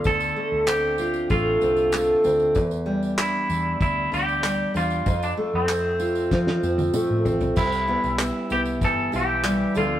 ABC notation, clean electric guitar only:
X:1
M:4/4
L:1/16
Q:1/4=96
K:C
V:1 name="Clean electric guitar"
A4 G4 F6 z2 | z4 E4 E2 G4 F2- | F D2 C8- C3 z2 | E4 z2 G2 A2 G4 F2 |]